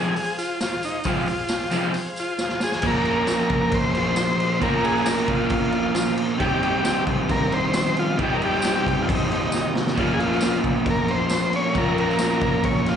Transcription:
Already playing: overdriven electric guitar F2 C3 F3 G#3 C4, transistor combo organ G#4 C5 G5
0.16 transistor combo organ G#4 C5 F5, open hi-hat
0.38 transistor combo organ F4, open hi-hat, tambourine
0.60 transistor combo organ F4 G#4 C5 F5, snare, open hi-hat, tambourine
0.83 transistor combo organ D#4, open hi-hat, tambourine
1.04 overdriven electric guitar F2 C3 F3 G#3, transistor combo organ F4 G#4 C5 F5, kick, open hi-hat, tambourine
1.08 overdriven electric guitar C4
1.26 open hi-hat, tambourine
1.47 transistor combo organ G#4 C5 G5, snare, open hi-hat, tambourine
1.69 overdriven electric guitar F2 C3, transistor combo organ G#4 C5 G5, open hi-hat, tambourine
1.73 overdriven electric guitar F3 G#3 C4
1.94 transistor combo organ G#4 C5 F5, open hi-hat, tambourine
2.16 transistor combo organ F4, open hi-hat, tambourine
2.38 transistor combo organ F4 G#4 C5 F5, snare, tambourine
2.49 snare
2.60 transistor combo organ G#4, snare, tambourine
2.72 snare
2.82 overdriven electric guitar A#2 F3 A#3, transistor combo organ F4 A#4 C#5, kick, crash
2.86 overdriven electric guitar C#4 F4 A#4, transistor combo organ A#4
3.05 crash
3.27 transistor combo organ F4 A#4 C#5, snare, tambourine, crash
3.50 kick, crash
3.72 transistor combo organ C#4 F4 A#4 C5, kick, crash
3.95 snare, crash
4.16 transistor combo organ F4 A#4 D#5, snare, tambourine, crash
4.40 crash
4.60 overdriven electric guitar A#2 F3 A#3 C#4, transistor combo organ A#4, kick, crash
4.64 overdriven electric guitar F4 A#4, transistor combo organ F4 A#4 C#5
4.84 transistor combo organ G#4, crash
4.96 snare
5.06 transistor combo organ F4 A#4 C#5, snare, tambourine, crash
5.28 transistor combo organ F4, kick, crash
5.50 transistor combo organ F4 A#4 C#5, kick, crash
5.72 crash
5.93 transistor combo organ F4 A#4 C5, snare, tambourine, crash
6.18 crash
6.37 overdriven electric guitar C3 D#3 G3, transistor combo organ D#4 G4 C5, kick, crash
6.42 overdriven electric guitar C4 G4
6.63 transistor combo organ G4, crash
6.84 transistor combo organ D#4 G4 C5, snare, tambourine, crash
7.07 kick, crash
7.27 transistor combo organ D#4 G4 C5, kick, crash
7.31 transistor combo organ A#4
7.52 transistor combo organ C5, crash
7.71 transistor combo organ D#4 G4 C5, snare, tambourine, crash
7.76 transistor combo organ C5
7.97 transistor combo organ F4, crash
8.17 overdriven electric guitar C3 D#3 G3, transistor combo organ D#4 G4 D#5, kick, crash
8.21 overdriven electric guitar C4 G4, transistor combo organ G4
8.34 transistor combo organ A#4
8.42 transistor combo organ G4, crash
8.54 snare
8.62 transistor combo organ D#4 G4 C5, snare, tambourine, crash
8.87 kick, crash
9.02 transistor combo organ F4
9.07 transistor combo organ D#4 G4 C5, kick, crash
9.14 transistor combo organ D#4
9.32 snare, crash
9.52 transistor combo organ D#4 G4 A#4, snare, tambourine
9.75 snare
9.87 snare
9.95 overdriven electric guitar A#2 F3 A#3 C#4, transistor combo organ F4 C#5, kick, crash
9.99 transistor combo organ F4 A#4, overdriven electric guitar F4
10.13 transistor combo organ G#4
10.19 transistor combo organ F4, crash
10.31 snare
10.39 transistor combo organ F4 A#4 C#5, snare, tambourine, crash
10.64 kick, crash
10.85 transistor combo organ F4 A#4 C#5, kick, crash
10.90 transistor combo organ A#4
11.08 transistor combo organ C5, crash
11.30 transistor combo organ F4 A#4 C5, snare, tambourine, crash
11.34 transistor combo organ C#5
11.53 transistor combo organ C#5, crash
11.73 overdriven electric guitar A#2 F3 A#3 C#4, transistor combo organ F4 A#4 C#5, kick, crash
11.78 overdriven electric guitar F4, transistor combo organ A#4
11.98 transistor combo organ A#4, crash
12.09 snare
12.19 transistor combo organ F4 A#4 C#5, snare, tambourine, crash
12.41 kick, crash
12.63 transistor combo organ F4 A#4 C#5, kick, crash
12.86 transistor combo organ F4, snare, crash

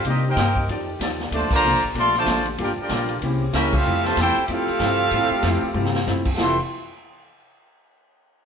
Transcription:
Already playing: saxophone section C4
0.04 upright bass C3, hollow-body jazz guitar C3 A#3 D#4 G4, saxophone section D#3 A#3 G4, trombone section G3 A#3 D#4, kick, ride
0.08 trumpet section C4 G4 A#4 D#5
0.27 trombone section A#3 D#4 G4, trumpet section D#4 A#4 C5 G5
0.36 upright bass G2, hollow-body jazz guitar C3 A#3 D#4 G4, kick, snare, hi-hat pedal, ride
0.56 kick
0.68 upright bass F2, hollow-body jazz guitar F3 D#4 A4 D5, saxophone section G3 D4 G4, kick, ride
0.99 upright bass D#2, hollow-body jazz guitar F3 D#4 A4 D5, kick, snare, hi-hat pedal, ride
1.20 snare
1.31 upright bass D2, saxophone section C3, trombone section D3 F3 A3, hollow-body jazz guitar A#3 D4, trumpet section F4 D5 A5, kick, ride
1.35 hollow-body jazz guitar A4 C5, trumpet section C5
1.41 upright bass A#1
1.51 upright bass A1, trombone section D3 F3 A#3, kick, crash
1.56 trumpet section F4 C5 D5 A#5
1.62 upright bass C2, hollow-body jazz guitar A#3 D4 A4, hi-hat pedal
1.67 hollow-body jazz guitar C5
1.73 upright bass A#1
1.82 upright bass A1, ride
1.94 upright bass A#1, trombone section F3 A3 C4, hollow-body jazz guitar A#3 D4 A4 C5, kick, ride
1.98 trumpet section A4 D5 F5 C6
2.15 trombone section D3, trumpet section C5 D5, snare
2.19 trombone section F3 A3, trumpet section F4 A5
2.26 upright bass A1, hollow-body jazz guitar A#3 D4 A4 C5, kick, snare, hi-hat pedal, ride
2.46 ride
2.58 upright bass G1, saxophone section F3 G4, hollow-body jazz guitar G3 A#3 F4 A4, trombone section A#3 D4 G4, kick, ride
2.62 trumpet section F4 A#4 D5 G5
2.78 trombone section A#3 D4 G4, trumpet section A#4 D5, muted upright bass stroke
2.82 trumpet section F4 G5
2.89 upright bass A#1, hollow-body jazz guitar G3 A#3 F4 A4, kick, snare, hi-hat pedal, ride
3.09 ride
3.21 upright bass C2, hollow-body jazz guitar C3 A#3 C#4 E4, saxophone section C#3 C4 G4, kick, ride
3.53 upright bass C#2, hollow-body jazz guitar C3 A#3 C#4 E4, trombone section G3 A#3 E4, trumpet section C#4 G4 A#4 E5, kick, snare, hi-hat pedal, ride
3.73 trombone section A3 C4 F4, trumpet section C4 A4 E5 F5, kick, crash
3.85 upright bass F2, saxophone section C3 F3 A3, hollow-body jazz guitar F3 A3 C4 E4
4.05 trombone section C3 E3 A3, trumpet section F4 C5 E5 A5, snare
4.17 upright bass E2, hollow-body jazz guitar F3 A3 C4 E4, trombone section G4, kick, snare, hi-hat pedal, ride
4.21 trumpet section E4 A4 C5 G5
4.36 muted upright bass stroke, ride
4.46 upright bass F2, hollow-body jazz guitar F3 A3, trombone section A3 C4 F4, trumpet section E5, kick, ride
4.50 hollow-body jazz guitar C4 E4, trumpet section C4 A4 E5 F5
4.68 muted upright bass stroke, ride
4.79 upright bass G2, hollow-body jazz guitar F3 A3 C4 E4, kick, snare, hi-hat pedal, ride
5.11 upright bass A2, hollow-body jazz guitar F3 A3 E4, kick, ride
5.15 hollow-body jazz guitar C4
5.31 muted upright bass stroke
5.42 upright bass F2, hollow-body jazz guitar F3 A3 C4 E4, kick, snare, hi-hat pedal, ride
5.62 muted upright bass stroke
5.74 upright bass G2, hollow-body jazz guitar F3 A3 C4, mid tom
5.78 hollow-body jazz guitar E4
5.85 snare
5.95 snare
6.06 upright bass F#2, hollow-body jazz guitar F3 A3 C4 E4, snare, hi-hat pedal
6.25 kick, crash
6.37 upright bass F1, trombone section F2 C3 E3 A3, saxophone section E3 G3 A3 F4, hollow-body jazz guitar F3 A3 E4 G4, trumpet section E5 C6, snare
6.42 trumpet section A4 G5

